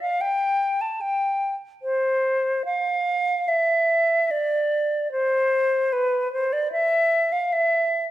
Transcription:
0.01 F5
0.21 G5
0.81 A5
1.01 G5
1.82 C5
2.65 F5
3.48 E5
4.31 D5
5.12 C5
5.93 B4
6.33 C5
6.53 D5
6.72 E5
7.32 F5
7.53 E5

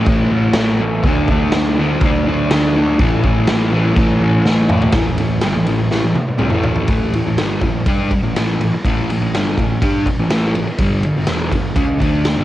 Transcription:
0.06 A1 A2 E3 A3, kick, crash
0.31 A1 A2 E3 A3
0.53 A1 A2 E3, snare, crash
0.58 A3
0.81 A2 E3 A3
1.03 D2 D3 A3, kick, crash
1.08 D4
1.28 D2 D3 A3 D4, kick
1.52 D2 D3 A3, snare, crash
1.57 D4
1.79 D3 A3 D4
2.01 D2 D3, kick, crash
2.05 A3 D4
2.27 D2 D3 A3 D4
2.51 D2 D3 A3 D4, snare, crash
2.76 D3 A3 D4
2.99 A1 A2 E3 A3, kick, crash
3.24 A1 A2 E3 A3, kick
3.47 A1 A2 E3 A3, snare, crash
3.72 A2 E3 A3
3.96 A1 A2 E3 A3, kick, crash
4.20 A1 A2 E3 A3
4.45 A1 A2 E3 A3, snare
4.70 A2 E3 A3, mid tom
4.82 floor tom
4.92 A1 A2 E3, kick, snare, ride
5.07 A1 A2 E3
5.18 A1 A2 E3, ride
5.41 G1 G2 D3, snare, ride
5.55 A1 A2 E3
5.66 A1 A2 E3, ride
5.91 A1 A2 E3, snare
6.03 A1 A2 E3
6.15 muted distorted electric guitar stroke, high tom
6.29 muted distorted electric guitar stroke, muted picked electric bass stroke
6.38 C2 C3 G3, mid tom
6.50 A1 A2 E3 A3, mid tom
6.64 floor tom
6.76 floor tom
6.88 A1 A2 E3 A3, kick, ride
7.12 A1 A2 E3, ride
7.25 A1 A2 E3
7.37 G1 G2 D3 G3, snare, ride
7.61 A1 A2 E3, kick, ride
7.86 G2 G3 D4 G4, kick, ride
8.11 muted picked electric bass stroke, muted distorted electric guitar stroke, kick, ride
8.23 A1 A2 E3
8.35 A1 A2 E3 A3, snare, ride
8.59 A1 A2 E3, ride
8.74 muted distorted electric guitar stroke
8.84 A1 A2 E3 A3, kick, ride
9.09 A1 A2 E3, ride
9.20 A1 A2 E3
9.33 G1 G2 D3 G3, snare, ride
9.58 A1 A2 E3, kick, ride
9.82 G2 G3 D4 G4, kick, ride
10.06 muted distorted electric guitar stroke, kick, ride
10.17 A1 A2 E3
10.30 A1 A2 E3 A3, snare, ride
10.54 A1 A2 E3, ride
10.66 muted picked electric bass stroke, muted distorted electric guitar stroke
10.78 G1 G2 D3 G3, kick, ride
11.01 G1, ride
11.05 G2 D3
11.13 G1
11.17 G2 D3
11.25 E1 E2, snare, ride
11.30 B2 E3
11.52 G1 G2 D3, kick, ride
11.75 C#2 C#3 G#3 C#4, kick, ride
12.00 D2 D3 A3 D4, kick, ride
12.25 snare, ride
12.36 G1 G2 D3

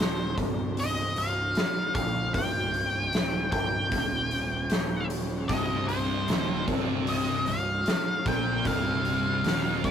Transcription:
Already playing: C5
0.00 D#1, snare
0.38 C1, kick, open hi-hat
0.77 D#5, open hi-hat
1.16 C1 F5, open hi-hat
1.55 snare, open hi-hat
1.95 A#1 F5, kick, open hi-hat
2.34 C1 G5, kick, open hi-hat
2.74 open hi-hat
3.13 D#1, snare, open hi-hat
3.52 C1 G5, kick, open hi-hat
3.92 D#1, kick, open hi-hat
4.31 open hi-hat
4.70 snare, open hi-hat
5.10 open hi-hat
5.48 C1 C2 C3 D#5, kick, open hi-hat
5.88 C5, open hi-hat
6.28 D#1 D#2 D#3, snare, open hi-hat
6.68 C1 C2 C3, kick, open hi-hat
7.07 D#5, open hi-hat
7.46 C1 C2 F5, open hi-hat
7.86 snare, open hi-hat
8.26 A#1 A#2 A#3 G5, kick, open hi-hat
8.65 C1 C2 C3 F5, kick, open hi-hat
9.05 open hi-hat
9.44 D#1 D#2 D#3, snare, open hi-hat
9.84 C1 C2 C3 D#5, kick, open hi-hat

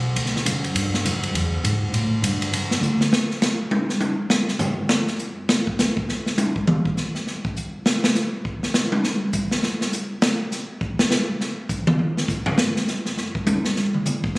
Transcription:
Already playing: B1
0.16 D2, ride
0.26 snare
0.36 snare
0.46 F#2, hi-hat pedal, ride
0.64 ride
0.75 G2, ride
0.94 snare
1.04 F#2, hi-hat pedal, ride
1.23 ride
1.34 E2, ride
1.64 G#2, hi-hat pedal, ride
1.92 A2, ride
2.22 G2, hi-hat pedal, ride
2.42 ride
2.52 F#2, ride
2.71 snare
2.81 D2, hi-hat pedal
3.01 snare
3.13 snare
3.31 snare
3.42 snare, hi-hat pedal
3.71 high tom
3.89 snare
4.00 hi-hat pedal, high tom
4.30 snare
4.48 snare
4.59 floor tom, hi-hat pedal
4.89 snare
5.07 snare
5.19 hi-hat pedal
5.49 snare
5.67 kick
5.79 snare, hi-hat pedal
5.97 kick
6.09 snare
6.26 snare
6.38 hi-hat pedal, high tom
6.56 kick
6.67 mid tom
6.85 kick
6.97 snare, hi-hat pedal
7.15 snare
7.27 snare
7.45 kick
7.56 hi-hat pedal
7.86 snare
8.04 snare
8.15 snare, hi-hat pedal
8.45 kick
8.63 snare
8.74 snare, hi-hat pedal
8.92 high tom
9.04 snare
9.33 kick, hi-hat pedal
9.51 snare
9.63 snare
9.81 snare
9.93 hi-hat pedal
10.22 snare
10.52 snare, hi-hat pedal
10.81 kick
10.99 snare
11.11 snare, hi-hat pedal
11.41 snare
11.69 kick, hi-hat pedal
11.87 mid tom
11.99 floor tom
12.17 snare
12.28 kick, hi-hat pedal
12.46 floor tom
12.58 snare
12.76 snare
12.88 snare, hi-hat pedal
13.06 snare
13.18 snare
13.35 kick
13.47 hi-hat pedal, high tom
13.65 snare
13.76 snare
13.94 mid tom
14.06 hi-hat pedal, mid tom
14.24 kick

